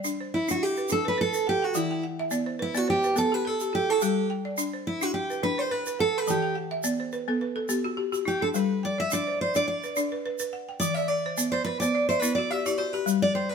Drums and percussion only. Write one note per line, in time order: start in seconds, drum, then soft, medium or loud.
0.05 shaker medium
0.48 shaker medium
0.76 shaker soft
0.89 shaker medium
1.33 shaker medium
1.74 shaker medium
2.31 shaker medium
2.75 shaker soft
3.03 shaker soft
3.16 shaker medium
3.60 shaker soft
4.01 shaker medium
4.58 shaker medium
5.01 shaker medium
5.30 shaker soft
5.86 shaker medium
6.27 shaker medium
6.83 shaker medium
7.12 shaker soft
7.69 shaker medium
8.14 shaker soft
8.27 shaker soft
8.54 shaker medium
9.11 shaker medium
9.55 shaker medium
9.83 shaker soft
9.96 shaker medium
10.39 shaker medium
10.81 shaker medium
11.38 shaker medium
11.81 shaker medium
12.10 shaker soft
12.22 shaker medium
12.66 shaker medium
13.07 shaker medium